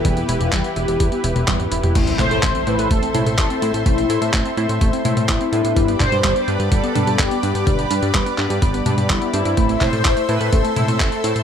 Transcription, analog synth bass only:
X:1
M:4/4
L:1/16
Q:1/4=126
K:Am
V:1 name="Analog synth bass" clef=bass
E,,2 E,,, E,,, E,, z E,,, E,,, E,, z E,,, E,,, E,,2 E,,, E,,, | A,,,2 A,, A,, A,,, z A,, A,, A,,, z A,, A,, A,,, z A,, A,, | A,,,2 A,, A,, A,,, z A,, A,, A,,, z A,, A,, A,,, z A,, A,, | G,,,2 G,, G,, G,,, z G,, G,, G,,, z G,, G,, G,,, z G,, G,, |
G,,,2 G,, G,, G,,, z G,, G,, G,,,2 G,, G,, G,,, z G,, G,, | A,,,2 A,, A,, A,,, z A,, A,, A,,, z A,, A,, A,,, z A,, A,, |]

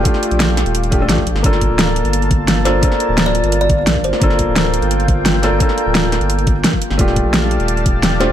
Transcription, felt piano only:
X:1
M:4/4
L:1/16
Q:1/4=173
K:Gm
V:1 name="Felt piano"
[A,DFG]8- [A,DFG]2 [A,DFG] [A,DFA] [A,DFG] z3 | [B,DFA]12- [B,DFA]2 [B,DFA]2 | [B,DFA]8- [B,DFA]3 z4 z | [B,DFA]12- [B,DFA]2 [B,DFA]2 |
[B,DFA]8- [B,DFA]3 z4 z | [A,DFG]12- [A,DFG]2 [A,DFG]2 |]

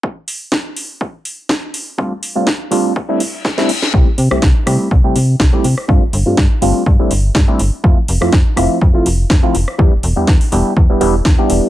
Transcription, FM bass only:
X:1
M:4/4
L:1/16
Q:"Swing 16ths" 1/4=123
K:C
V:1 name="FM bass" clef=bass
z16 | z16 | C,, z C, C,, C,, z C, z C,, C, C,2 C,, z C, z | G,, G,,, G,,, G,, G,, z G,,, z G,, G,,, G,,,2 G,, z G,,, z |
F,, z F,,, z F,, z F,,, z F,, F,,, F,,,2 F,, z F,,, z | E,, E,,, E,,, E,, E,, z E,,, z E,, E,,, E,,,2 E,, z E,,, z |]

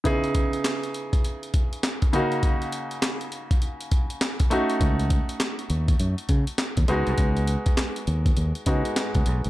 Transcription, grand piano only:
X:1
M:4/4
L:1/8
Q:"Swing 16ths" 1/4=101
K:C#m
V:1 name="Grand piano"
[C,B,DEG]6- [C,B,DEG] [C,^A,CDF]- | [C,^A,CDF]6- [C,A,CDF] [=A,CDF]- | [A,CDF]6- [A,CDF] [G,B,DF]- | [G,B,DF]4- [G,B,DF] [G,B,DF]3 |]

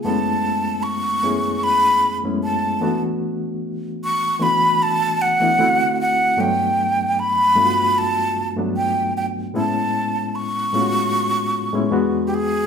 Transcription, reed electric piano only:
X:1
M:4/4
L:1/16
Q:"Swing 16ths" 1/4=76
K:A
V:1 name="Reed electric piano"
[F,,G,A,B,CE]4- [F,,G,A,B,CE] z [F,,A,B,CEG]4 z [F,,G,A,B,CE]3 [E,A,B,DF]2- | [E,A,B,DF]4 z2 [E,A,B,DF]4 z [E,A,B,DE] [D,A,=CEF]3 z | [=G,,F,A,B,D]4- [G,,F,A,B,D] z [G,,A,B,D=F^F]4 z [G,,F,A,B,D]4 z | [A,,G,B,CE]4- [A,,G,B,CE] z [A,,G,B,C=F^F]4 z [A,,G,B,CE] [E,,G,B,DF]3 z |]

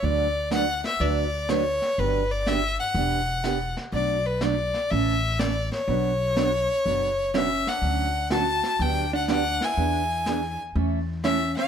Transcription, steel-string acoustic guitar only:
X:1
M:4/4
L:1/8
Q:"Swing" 1/4=123
K:D
V:1 name="Steel-string acoustic guitar"
[D,F,A,DFB] z [D,F,A,DFB] z [D,F,A,DFB] z [D,F,A,DFB] z | [D,F,B,DG] z [D,F,B,DG] z [E,B,DG] z [E,B,DG] z | [B,,F,A,DF] z [B,,F,A,DF] z [C,E,A,CA] z [C,E,A,CA] z | [B,,F,B,DFc] z [B,,F,B,DFc] z [B,,F,B,DFc] z [B,,F,B,DFc] z |
[D,F,A,CF] z [D,F,A,CF] z [D,F,B,DG] z [D,F,B,DG] z | [E,B,D^G] z [E,B,DG] z [E,A,CEA] z [E,A,CEA] z |]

